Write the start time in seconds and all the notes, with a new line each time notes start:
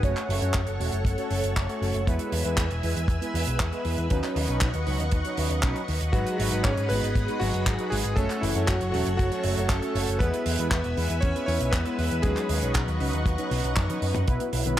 Already playing: F#5
0.03 F#1 A3 C#4 F#4 A4 C#5 C#6, kick, closed hi-hat
0.16 clap, closed hi-hat
0.29 F#1, open hi-hat
0.42 F#2 A3 C#4 F#4 C#5, closed hi-hat
0.54 F#2, kick, clap, closed hi-hat
0.67 F#1, closed hi-hat
0.80 E1 A3 C#4 F#4 C#5, open hi-hat
0.92 F#1, closed hi-hat
1.05 F#1, kick, closed hi-hat
1.18 A3 C#4 F#4 C#5, closed hi-hat
1.31 F#1, open hi-hat
1.43 F#1, closed hi-hat
1.56 F#1, kick, clap, closed hi-hat
1.69 A3 C#4 F#4 C#5, closed hi-hat
1.82 F#1, open hi-hat
1.94 F#1, closed hi-hat
2.07 E2 G#3 B3 E4 B4 E5 G#5 E6, kick, closed hi-hat
2.19 closed hi-hat
2.32 E2, open hi-hat
2.45 E2 G#3 B3 E4 B4, closed hi-hat
2.57 E2, kick, clap, closed hi-hat
2.70 E1, closed hi-hat
2.83 E2 G#3 B3 E4 B4, open hi-hat
2.96 E2, closed hi-hat
3.08 E2, kick, closed hi-hat
3.21 G#3 B3 E4 B4, closed hi-hat
3.34 E2, open hi-hat
3.47 B1, closed hi-hat
3.60 E2, kick, clap, closed hi-hat
3.72 G#3 B3 E4 B4, closed hi-hat
3.85 E2, open hi-hat
3.98 E2, closed hi-hat
4.10 D#2 F#3 C#4 D#4 B4 D#5 F#5 C#6, kick, closed hi-hat
4.23 clap, closed hi-hat
4.36 D#2, open hi-hat
4.48 B1 F#3 C#4 D#4 B4, closed hi-hat
4.61 B1, kick, clap, closed hi-hat
4.74 D#2, closed hi-hat
4.87 C#2 F#3 C#4 D#4 B4, open hi-hat
5.00 D#2, closed hi-hat
5.12 D#2, kick, closed hi-hat
5.25 F#3 C#4 D#4 B4, closed hi-hat
5.37 D#2, open hi-hat
5.50 D#2, closed hi-hat
5.63 B1 F#3 C#4 D#4 B4, kick, clap, closed hi-hat
5.76 closed hi-hat
5.88 D#2, open hi-hat
6.01 D#2, closed hi-hat
6.13 G#1 F#3 G#3 D#4 F#4 G#4 B4 D#5 B5, kick, closed hi-hat
6.26 closed hi-hat
6.38 G#1 F#3 F#4, open hi-hat
6.52 G#1 G#3 D#4 F#4 B4, closed hi-hat
6.63 G#1 C#4 C#5, kick, clap, closed hi-hat
6.77 G#2, closed hi-hat
6.89 G#1 G#3 B3 D#4 F#4 B4, open hi-hat
7.03 G#1, closed hi-hat
7.15 G#1, kick, closed hi-hat
7.28 G#3 D#4 F#4 B4, closed hi-hat
7.40 G#1 F#3 F#4, open hi-hat
7.54 F#1, closed hi-hat
7.66 G#1, kick, clap, closed hi-hat
7.79 G#3 D#4 F#4 B4, closed hi-hat
7.90 G#1 G#3 G#4, open hi-hat
8.04 G#1, closed hi-hat
8.16 F#1 A3 C#4 F#4 A4 C#5 C#6, kick, closed hi-hat
8.30 clap, closed hi-hat
8.41 F#1 E3 E4, open hi-hat
8.55 F#2 A3 C#4 F#4 C#5, closed hi-hat
8.67 F#2 F#3 F#4, kick, clap, closed hi-hat
8.81 F#1, closed hi-hat
8.92 E1 F#3 A3 C#4 F#4 C#5, open hi-hat
9.06 F#1, closed hi-hat
9.17 F#1 F#3 F#4, kick, closed hi-hat
9.32 A3 C#4 F#4 C#5, closed hi-hat
9.43 F#1, open hi-hat
9.57 F#1, closed hi-hat
9.68 F#1 A3 A4, kick, clap, closed hi-hat
9.82 A3 C#4 F#4 C#5, closed hi-hat
9.95 F#1, open hi-hat
10.08 F#1, closed hi-hat
10.19 E2 G#3 B3 E4 B4 E5 G#5 E6, kick, closed hi-hat
10.34 closed hi-hat
10.46 E2, open hi-hat
10.59 E2 G#3 B3 E4 B4, closed hi-hat
10.70 E2 B3 B4, kick, clap, closed hi-hat
10.84 E1, closed hi-hat
10.97 E2 G#3 B3 E4 B4, open hi-hat
11.10 E2, closed hi-hat
11.21 E2 C#4 C#5, kick, closed hi-hat
11.35 G#3 B3 E4 B4, closed hi-hat
11.46 E2 C#4 C#5, open hi-hat
11.61 B1, closed hi-hat
11.71 E2 B3 B4, kick, clap, closed hi-hat
11.86 G#3 B3 E4 B4, closed hi-hat
11.99 E2, open hi-hat
12.11 E2, closed hi-hat
12.22 D#2 F#3 G#3 C#4 D#4 G#4 B4 D#5 F#5 C#6, kick, closed hi-hat
12.36 clap, closed hi-hat
12.49 D#2, open hi-hat
12.62 B1 F#3 C#4 D#4 B4, closed hi-hat
12.73 B1 F#3 F#4, kick, clap, closed hi-hat
12.88 D#2, closed hi-hat
13.00 C#2 F#3 C#4 D#4 B4, open hi-hat
13.13 D#2, closed hi-hat
13.26 D#2, kick, closed hi-hat
13.38 F#3 C#4 D#4 B4, closed hi-hat
13.51 B1, open hi-hat
13.64 B1, closed hi-hat
13.76 F#2, kick, clap, closed hi-hat, high tom
13.89 F#3 C#4 D#4 B4, closed hi-hat, high tom
14.02 F#2, open hi-hat
14.15 F#2, closed hi-hat, mid tom
14.27 B1 B2 F#3 B3 E4 B4 E5 F#5 E6, kick, closed hi-hat, riser
14.40 B3, closed hi-hat
14.53 B1 B3, open hi-hat
14.65 B1 D#3 F#3 B3 E4 B4, closed hi-hat